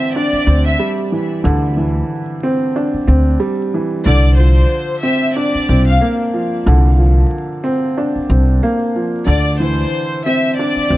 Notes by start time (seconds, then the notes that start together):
Already playing: D3 E3 C4 E5
0.15 D4 D5
0.33 muted upright bass stroke
0.46 D2 C4
0.66 E5
0.79 G3
1.12 E3
1.44 D2 D3
1.77 E3
2.43 C4
2.76 D4
2.94 muted upright bass stroke
3.07 D2 C4
3.40 G3
3.74 E3
4.06 C2 D3 D5
4.37 F3 C5
5.03 C4 E5
5.36 D4 D5
5.55 muted upright bass stroke
5.69 C2 C4
5.87 F5
6.01 A#3
6.34 F3
6.66 C2 D3
6.98 F3
7.64 C4
7.97 D4
8.16 muted upright bass stroke
8.30 C2 C4
8.63 A#3
8.96 F3
9.26 D2 D3 D5
9.60 E3 C5
10.26 C4 E5
10.58 D4 D5
10.76 muted upright bass stroke
10.90 D2 C4